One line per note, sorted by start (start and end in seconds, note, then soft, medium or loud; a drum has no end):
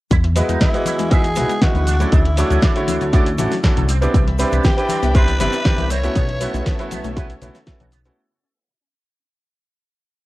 0.10 0.41 E2 loud
0.10 0.22 D#3 medium
0.10 0.15 E4 loud
0.10 kick loud
0.10 closed hi-hat medium
0.10 high conga medium
0.10 cabasa soft
0.10 shaker soft
0.24 0.28 E3 medium
0.24 closed hi-hat soft
0.35 0.40 F#3 medium
0.35 0.71 G#3 medium
0.35 0.71 B3 medium
0.35 0.46 E4 medium
0.35 0.71 E4 medium
0.35 0.71 F#4 medium
0.35 0.71 D#5 medium
0.35 open hi-hat loud
0.35 cabasa medium
0.35 shaker medium
0.49 0.57 E2 loud
0.49 0.56 G#3 medium
0.49 0.58 D#4 medium
0.49 closed hi-hat soft
0.49 high conga medium
0.49 cabasa medium
0.49 shaker soft
0.61 0.65 D#3 medium
0.61 1.13 E4 loud
0.61 0.68 E4 medium
0.61 kick loud
0.61 snare loud
0.61 closed hi-hat medium
0.61 cabasa soft
0.61 shaker soft
0.74 0.81 E3 medium
0.74 1.09 E3 medium
0.74 1.08 G#3 medium
0.74 1.08 B3 medium
0.74 1.09 F#4 loud
0.74 1.09 D#5 medium
0.74 closed hi-hat soft
0.74 shaker soft
0.86 0.97 F#3 medium
0.86 0.93 E4 loud
0.86 open hi-hat loud
0.86 high conga medium
0.86 cabasa loud
0.86 shaker medium
0.99 1.38 E2 medium
0.99 1.03 G#3 loud
0.99 closed hi-hat soft
0.99 cabasa medium
0.99 shaker soft
1.11 1.22 D#3 loud
1.11 1.25 G#3 loud
1.11 1.25 B3 medium
1.11 1.25 D#4 medium
1.11 1.25 E4 medium
1.11 1.25 F#4 loud
1.11 1.63 G#4 loud
1.11 1.21 E5 medium
1.11 kick loud
1.11 closed hi-hat medium
1.11 cabasa soft
1.11 shaker soft
1.24 1.28 E3 medium
1.24 closed hi-hat soft
1.24 shaker soft
1.36 1.45 B1 medium
1.36 1.41 F#3 medium
1.36 1.50 G#3 medium
1.36 1.50 B3 medium
1.36 1.50 D#4 medium
1.36 1.51 E4 medium
1.36 1.51 F#4 loud
1.36 open hi-hat loud
1.36 high conga medium
1.36 low conga loud
1.36 cabasa loud
1.36 shaker medium
1.49 1.56 G#3 medium
1.49 closed hi-hat soft
1.49 cabasa medium
1.49 shaker soft
1.61 1.69 D#3 medium
1.61 1.83 G#3 medium
1.61 1.83 B3 medium
1.61 1.83 D#4 medium
1.61 1.83 E4 medium
1.61 2.11 F#4 loud
1.61 1.83 F#4 medium
1.61 kick loud
1.61 snare loud
1.61 closed hi-hat medium
1.61 cabasa soft
1.61 shaker soft
1.75 2.05 D2 medium
1.75 1.82 E3 medium
1.75 1.79 B4 medium
1.75 closed hi-hat soft
1.75 high conga medium
1.75 shaker soft
1.87 1.91 E3 medium
1.87 1.94 D4 loud
1.87 open hi-hat loud
1.87 cabasa loud
1.87 shaker medium
2.00 2.10 F#3 medium
2.00 2.21 A3 medium
2.00 2.21 C#4 medium
2.00 2.21 D4 medium
2.00 2.21 E4 medium
2.00 2.22 F#4 medium
2.00 closed hi-hat soft
2.00 cabasa medium
2.00 shaker soft
2.12 2.43 D2 loud
2.12 2.23 C#3 medium
2.12 2.17 D4 loud
2.12 3.09 E4 medium
2.12 kick loud
2.12 closed hi-hat medium
2.12 high conga medium
2.12 cabasa soft
2.12 shaker soft
2.25 2.30 D3 medium
2.25 closed hi-hat soft
2.37 2.42 E3 medium
2.37 2.73 A3 medium
2.37 2.73 D4 medium
2.37 2.48 D4 medium
2.37 2.73 E4 medium
2.37 2.73 F#4 loud
2.37 2.73 C#5 medium
2.37 open hi-hat loud
2.37 cabasa loud
2.37 shaker medium
2.51 2.58 D2 loud
2.51 2.58 F#3 medium
2.51 2.60 C#4 medium
2.51 closed hi-hat soft
2.51 high conga medium
2.51 cabasa medium
2.51 shaker soft
2.62 2.67 C#3 medium
2.62 2.70 D4 medium
2.62 kick loud
2.62 snare loud
2.62 closed hi-hat medium
2.62 cabasa soft
2.62 shaker soft
2.76 2.83 D3 medium
2.76 3.10 D3 medium
2.76 3.10 A3 medium
2.76 3.11 E4 medium
2.76 3.11 F#4 loud
2.76 3.10 C#5 medium
2.76 closed hi-hat soft
2.76 shaker soft
2.88 2.99 D2 soft
2.88 2.99 E3 medium
2.88 2.95 D4 loud
2.88 open hi-hat loud
2.88 high conga loud
2.88 cabasa medium
2.88 shaker medium
3.01 3.40 D2 medium
3.01 3.05 F#3 loud
3.01 closed hi-hat soft
3.01 cabasa soft
3.01 shaker soft
3.13 3.24 C#3 loud
3.13 3.27 A3 loud
3.13 3.27 C#4 medium
3.13 3.27 D4 medium
3.13 3.27 E4 medium
3.13 3.27 F#4 loud
3.13 3.23 D5 medium
3.13 kick loud
3.13 closed hi-hat medium
3.13 cabasa soft
3.13 shaker soft
3.26 3.31 D3 medium
3.26 closed hi-hat soft
3.26 shaker soft
3.38 3.47 A1 medium
3.38 3.43 E3 medium
3.38 3.52 A3 medium
3.38 3.52 C#4 medium
3.38 3.52 D4 medium
3.38 3.52 E4 medium
3.38 3.53 F#4 medium
3.38 open hi-hat loud
3.38 high conga medium
3.38 low conga medium
3.38 cabasa medium
3.38 shaker medium
3.51 3.58 F#3 medium
3.51 snare soft
3.51 open hi-hat medium
3.51 cabasa medium
3.51 shaker soft
3.63 3.71 C#3 medium
3.63 3.85 A3 medium
3.63 3.85 C#4 medium
3.63 3.85 D4 medium
3.63 3.85 E4 medium
3.63 3.85 F#4 medium
3.63 kick loud
3.63 snare loud
3.63 closed hi-hat medium
3.63 cabasa soft
3.63 shaker soft
3.77 4.07 C2 medium
3.77 3.84 D3 medium
3.77 3.81 A4 medium
3.77 closed hi-hat soft
3.77 high conga loud
3.77 shaker soft
3.89 3.93 G3 medium
3.89 3.96 C4 loud
3.89 open hi-hat loud
3.89 cabasa loud
3.89 shaker medium
4.01 4.23 B3 medium
4.01 4.12 B3 medium
4.01 4.23 C4 medium
4.01 4.23 D4 medium
4.01 4.23 E4 medium
4.01 4.23 G4 medium
4.01 closed hi-hat soft
4.01 cabasa medium
4.01 shaker soft
4.14 4.45 C2 loud
4.14 4.25 D3 medium
4.14 4.18 C4 loud
4.14 6.14 D5 medium
4.14 8.13 E5 medium
4.14 6.14 B5 medium
4.14 kick loud
4.14 closed hi-hat medium
4.14 high conga medium
4.14 cabasa soft
4.14 shaker soft
4.27 4.31 E3 medium
4.27 closed hi-hat soft
4.39 4.43 G3 medium
4.39 4.75 C4 medium
4.39 4.49 C4 medium
4.39 4.75 D4 medium
4.39 4.75 E4 medium
4.39 4.75 G4 loud
4.39 4.74 B4 medium
4.39 open hi-hat loud
4.39 cabasa medium
4.39 shaker medium
4.52 4.60 C2 loud
4.52 4.59 B3 medium
4.52 4.62 B3 medium
4.52 closed hi-hat soft
4.52 high conga medium
4.52 cabasa soft
4.52 shaker soft
4.64 4.69 D3 medium
4.64 4.71 C4 medium
4.64 5.17 G4 medium
4.64 kick loud
4.64 snare loud
4.64 closed hi-hat medium
4.64 cabasa soft
4.64 shaker soft
4.77 4.84 E3 medium
4.77 5.12 D4 medium
4.77 5.12 E4 medium
4.77 5.12 G4 loud
4.77 5.12 B4 loud
4.77 closed hi-hat soft
4.77 shaker soft
4.89 5.01 G3 medium
4.89 4.96 C4 loud
4.89 open hi-hat loud
4.89 high conga medium
4.89 cabasa loud
4.89 shaker medium
5.03 5.41 C2 medium
5.03 5.07 B3 loud
5.03 closed hi-hat soft
5.03 cabasa medium
5.03 shaker soft
5.15 5.26 D3 loud
5.15 5.29 B3 loud
5.15 5.29 C4 medium
5.15 5.29 D4 loud
5.15 5.29 E4 medium
5.15 5.29 G4 loud
5.15 5.40 B4 loud
5.15 5.25 C5 medium
5.15 kick loud
5.15 closed hi-hat medium
5.15 cabasa soft
5.15 shaker soft
5.28 5.32 E3 medium
5.28 closed hi-hat soft
5.28 shaker soft
5.40 5.48 G1 medium
5.40 5.45 G3 medium
5.40 5.54 B3 medium
5.40 5.54 C4 medium
5.40 5.54 D4 medium
5.40 5.54 E4 medium
5.40 5.54 G4 medium
5.40 5.92 B4 loud
5.40 open hi-hat loud
5.40 high conga medium
5.40 low conga medium
5.40 cabasa medium
5.40 shaker medium
5.53 5.60 B3 medium
5.53 closed hi-hat soft
5.53 cabasa medium
5.53 shaker soft
5.65 5.73 D3 medium
5.65 5.86 B3 medium
5.65 5.87 C4 medium
5.65 5.87 D4 medium
5.65 5.87 E4 medium
5.65 5.87 G4 medium
5.65 kick loud
5.65 snare loud
5.65 closed hi-hat medium
5.65 cabasa soft
5.65 shaker soft
5.78 6.08 C2 medium
5.78 5.85 E3 medium
5.78 5.82 G4 medium
5.78 closed hi-hat soft
5.78 high conga medium
5.78 shaker soft
5.90 5.95 G3 medium
5.90 5.97 C4 loud
5.90 6.91 C#5 loud
5.90 open hi-hat loud
5.90 cabasa medium
5.90 shaker medium
6.03 6.24 A3 medium
6.03 6.25 B3 medium
6.03 6.14 B3 medium
6.03 6.25 C#4 medium
6.03 6.25 E4 medium
6.03 6.25 F#4 medium
6.03 closed hi-hat soft
6.03 cabasa soft
6.03 shaker soft
6.15 6.47 B1 loud
6.15 6.27 C#3 medium
6.15 8.15 B3 medium
6.15 6.20 B3 loud
6.15 8.15 A4 medium
6.15 8.15 C#5 medium
6.15 kick loud
6.15 closed hi-hat medium
6.15 high conga medium
6.15 cabasa soft
6.15 shaker soft
6.29 6.33 E3 medium
6.29 closed hi-hat soft
6.40 6.45 F#3 medium
6.40 6.76 A3 medium
6.40 6.76 B3 medium
6.40 6.51 B3 medium
6.40 6.76 C#4 medium
6.40 6.76 E4 medium
6.40 6.76 F#4 loud
6.40 open hi-hat loud
6.40 cabasa medium
6.40 shaker medium
6.54 6.62 B1 loud
6.54 6.63 A3 medium
6.54 6.61 A3 medium
6.54 closed hi-hat soft
6.54 high conga medium
6.54 cabasa medium
6.54 shaker soft
6.66 6.70 C#3 medium
6.66 6.73 B3 medium
6.66 kick loud
6.66 snare loud
6.66 closed hi-hat medium
6.66 cabasa soft
6.66 shaker soft
6.79 6.86 E3 medium
6.79 7.14 A3 medium
6.79 7.14 B3 medium
6.79 7.14 C#4 medium
6.79 7.14 E4 medium
6.79 7.14 F#4 loud
6.79 closed hi-hat soft
6.79 shaker soft
6.91 7.02 B1 soft
6.91 7.02 F#3 medium
6.91 6.98 B3 loud
6.91 open hi-hat loud
6.91 high conga loud
6.91 cabasa medium
6.91 shaker medium
7.04 7.35 B1 medium
7.04 7.09 A3 loud
7.04 closed hi-hat soft
7.04 cabasa medium
7.04 shaker soft
7.16 7.28 C#3 loud
7.16 7.30 A3 loud
7.16 7.30 B3 medium
7.16 7.30 C#4 medium
7.16 7.30 E4 medium
7.16 7.31 F#4 loud
7.16 7.26 B4 medium
7.16 kick loud
7.16 closed hi-hat medium
7.16 cabasa soft
7.16 shaker soft
7.30 7.34 E3 medium
7.30 closed hi-hat soft
7.30 shaker soft
7.42 7.50 B1 loud
7.42 7.56 A3 medium
7.42 7.46 A3 medium
7.42 7.56 B3 medium
7.42 7.56 C#4 medium
7.42 7.56 E4 medium
7.42 7.56 F#4 medium
7.42 open hi-hat loud
7.42 high conga medium
7.42 low conga medium
7.42 cabasa medium
7.42 shaker medium
7.55 7.62 E4 medium
7.55 snare soft
7.55 open hi-hat medium
7.55 cabasa medium
7.55 shaker soft
7.67 7.74 E3 medium
7.67 7.88 A3 medium
7.67 7.88 B3 medium
7.67 7.88 C#4 medium
7.67 7.89 E4 medium
7.67 7.89 F#4 medium
7.67 kick loud
7.67 snare loud
7.67 closed hi-hat medium
7.67 cabasa soft
7.67 shaker soft
7.80 8.10 B1 medium
7.80 7.87 C#4 medium
7.80 7.84 F#4 medium
7.80 closed hi-hat soft
7.80 high conga loud
7.80 shaker soft
7.92 8.00 C#3 medium
7.92 7.99 B3 loud
7.92 open hi-hat loud
7.92 cabasa medium
7.92 shaker medium
8.05 8.16 A3 medium
8.05 8.16 B3 medium
8.05 8.10 C#4 medium
8.05 8.16 C#4 medium
8.05 8.16 E4 medium
8.05 8.16 F#4 medium
8.05 closed hi-hat soft
8.05 cabasa soft
8.05 shaker soft